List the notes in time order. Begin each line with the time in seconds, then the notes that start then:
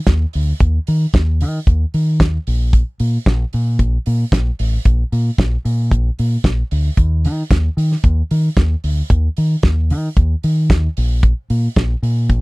0.07 D#2, kick, snare, closed hi-hat
0.33 D2, open hi-hat
0.60 D#2, kick, closed hi-hat
0.87 D#3, open hi-hat
1.14 D#2, kick, snare, closed hi-hat
1.41 D#3, open hi-hat
1.67 D#2, kick, closed hi-hat
1.94 D#3, open hi-hat
2.20 D#2, kick, snare, closed hi-hat
2.47 A#1, open hi-hat
2.73 kick, closed hi-hat
3.00 A#2, open hi-hat
3.26 A#1, kick, snare, closed hi-hat
3.53 A#2, open hi-hat
3.79 A#1, kick, closed hi-hat
4.06 A#2, open hi-hat
4.32 A#1, kick, snare, closed hi-hat
4.59 A1, open hi-hat
4.85 A#1, kick, closed hi-hat
5.12 A#2, open hi-hat
5.38 A#1, kick, snare, closed hi-hat
5.65 A#2, open hi-hat
5.91 A#1, kick, closed hi-hat
6.19 A#2, open hi-hat
6.44 A#1, kick, snare, closed hi-hat
6.71 D2, open hi-hat
6.97 D#2, kick, closed hi-hat
7.25 D#3, open hi-hat
7.51 D#2, kick, snare, closed hi-hat
7.77 D#3, open hi-hat
7.92 snare
8.04 D#2, kick, closed hi-hat
8.31 D#3, open hi-hat
8.57 D#2, kick, snare, closed hi-hat
8.84 D2, open hi-hat
9.10 D#2, kick, closed hi-hat
9.37 D#3, open hi-hat
9.63 D#2, kick, snare, closed hi-hat
9.90 D#3, open hi-hat
10.17 D#2, kick, closed hi-hat
10.43 D#3, open hi-hat
10.70 D#2, kick, snare, closed hi-hat
10.97 A#1, open hi-hat
11.23 kick, closed hi-hat
11.50 A#2, open hi-hat
11.76 A#1, kick, snare, closed hi-hat
12.03 A#2, open hi-hat
12.30 A#1, kick, closed hi-hat